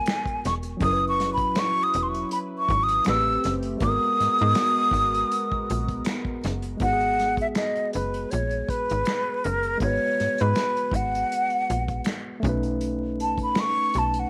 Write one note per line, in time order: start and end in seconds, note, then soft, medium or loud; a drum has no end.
0.00 0.75 G#3 medium
0.00 0.77 B3 medium
0.00 0.78 F#4 medium
0.00 0.83 A#4 medium
0.00 0.44 G#5 medium
0.06 finger snap loud
0.06 snare loud
0.06 closed hi-hat medium
0.26 kick medium
0.26 closed hi-hat soft
0.45 0.76 E1 medium
0.45 0.54 C#6 medium
0.45 snare soft
0.45 closed hi-hat medium
0.63 closed hi-hat soft
0.77 3.00 F#3 medium
0.77 3.03 F#3 medium
0.77 3.01 C#4 medium
0.77 3.03 E4 medium
0.77 3.03 B4 medium
0.77 kick loud
0.77 closed hi-hat medium
0.82 1.44 F#1 loud
0.82 3.03 E4 medium
0.82 0.90 A#4 medium
0.82 1.05 D#6 loud
0.93 3.08 B4 medium
1.09 1.30 C#6 loud
1.20 snare soft
1.20 closed hi-hat medium
1.34 1.60 B5 medium
1.34 kick medium
1.38 closed hi-hat soft
1.55 1.85 C#6 loud
1.55 finger snap medium
1.55 snare loud
1.55 closed hi-hat medium
1.83 2.04 D#6 loud
1.94 2.25 E1 medium
1.94 closed hi-hat medium
2.03 2.10 C6 medium
2.08 2.32 C#6 medium
2.14 closed hi-hat soft
2.31 2.38 B5 medium
2.31 closed hi-hat medium
2.58 2.85 C#6 loud
2.69 3.00 G#1 medium
2.69 kick medium
2.69 closed hi-hat medium
2.83 3.07 D#6 loud
2.88 closed hi-hat soft
3.04 3.38 A1 loud
3.04 3.79 A3 medium
3.04 3.80 A3 medium
3.04 3.79 C4 medium
3.04 3.81 C4 medium
3.04 3.79 G4 medium
3.04 3.82 G4 medium
3.04 finger snap medium
3.04 snare loud
3.04 closed hi-hat medium
3.09 3.82 B4 medium
3.09 3.53 E6 loud
3.44 3.76 F#1 medium
3.44 snare soft
3.44 closed hi-hat medium
3.62 closed hi-hat soft
3.77 6.75 G#3 medium
3.77 6.77 G#3 medium
3.77 3.88 A#3 soft
3.77 6.78 B3 medium
3.77 6.78 F#4 medium
3.77 6.78 A#4 medium
3.77 kick medium
3.77 closed hi-hat medium
3.82 3.99 G#1 loud
3.82 6.78 F#4 medium
3.82 6.03 D#6 loud
3.86 6.79 B3 medium
3.86 6.79 A#4 medium
4.20 4.28 G#2 soft
4.20 snare soft
4.20 closed hi-hat medium
4.38 4.54 G#2 loud
4.38 closed hi-hat soft
4.55 finger snap medium
4.55 snare loud
4.55 closed hi-hat medium
4.91 5.24 G#1 medium
4.91 kick medium
4.91 closed hi-hat medium
5.14 closed hi-hat soft
5.31 closed hi-hat medium
5.52 kick medium
5.70 6.01 A#1 medium
5.70 closed hi-hat medium
5.89 kick medium
5.89 closed hi-hat soft
6.05 finger snap loud
6.05 snare loud
6.05 closed hi-hat medium
6.25 kick medium
6.44 6.75 F#1 medium
6.44 snare soft
6.44 closed hi-hat medium
6.62 closed hi-hat soft
6.77 9.75 G#3 medium
6.77 9.76 B3 medium
6.77 kick medium
6.77 closed hi-hat medium
6.81 7.43 G#1 medium
6.81 9.78 F#4 medium
6.81 7.36 F#5 loud
6.86 6.91 G#4 medium
6.93 9.83 G#4 medium
7.00 closed hi-hat soft
7.19 snare soft
7.19 closed hi-hat medium
7.37 7.47 E5 medium
7.37 kick medium
7.37 closed hi-hat soft
7.55 7.91 D#5 medium
7.55 finger snap medium
7.55 snare loud
7.55 closed hi-hat medium
7.75 closed hi-hat soft
7.93 8.26 F#1 medium
7.93 8.32 B4 medium
7.93 closed hi-hat medium
8.14 closed hi-hat soft
8.31 8.63 A#1 medium
8.31 8.71 C#5 medium
8.31 closed hi-hat medium
8.51 closed hi-hat soft
8.69 9.46 B4 medium
8.69 kick medium
8.69 closed hi-hat medium
8.89 9.04 G#1 medium
8.89 closed hi-hat soft
9.05 finger snap loud
9.05 snare loud
9.05 closed hi-hat medium
9.44 9.76 F#1 medium
9.44 9.81 A#4 medium
9.44 closed hi-hat medium
9.63 closed hi-hat soft
9.78 12.38 G#3 medium
9.78 12.39 B3 medium
9.78 10.42 C#5 loud
9.78 kick medium
9.78 closed hi-hat medium
9.82 9.99 G#1 loud
9.82 12.40 F#4 medium
9.86 12.42 B4 medium
10.20 10.28 G#2 soft
10.20 snare soft
10.20 closed hi-hat medium
10.38 10.54 G#2 medium
10.38 10.97 B4 medium
10.38 closed hi-hat soft
10.55 finger snap medium
10.55 snare loud
10.55 closed hi-hat medium
10.77 closed hi-hat soft
10.91 11.24 G#1 medium
10.91 12.07 F#5 medium
10.91 kick medium
10.91 closed hi-hat medium
11.15 closed hi-hat soft
11.32 closed hi-hat medium
11.50 closed hi-hat soft
11.70 12.01 A#1 medium
11.70 closed hi-hat medium
11.88 kick medium
11.88 closed hi-hat soft
12.04 finger snap medium
12.04 snare loud
12.04 closed hi-hat medium
12.40 14.30 A3 medium
12.40 14.30 C#4 medium
12.40 kick loud
12.44 13.37 B1 loud
12.44 14.30 D#4 medium
12.44 closed hi-hat medium
12.49 14.30 B4 medium
12.63 closed hi-hat soft
12.81 closed hi-hat medium
13.20 13.39 A5 medium
13.20 closed hi-hat medium
13.38 kick medium
13.38 closed hi-hat soft
13.43 13.62 B5 medium
13.55 finger snap medium
13.55 snare loud
13.55 closed hi-hat medium
13.60 14.00 C#6 loud
13.94 14.26 B1 medium
13.94 closed hi-hat medium
13.98 14.21 A5 medium
14.14 closed hi-hat soft
14.19 14.30 F#5 medium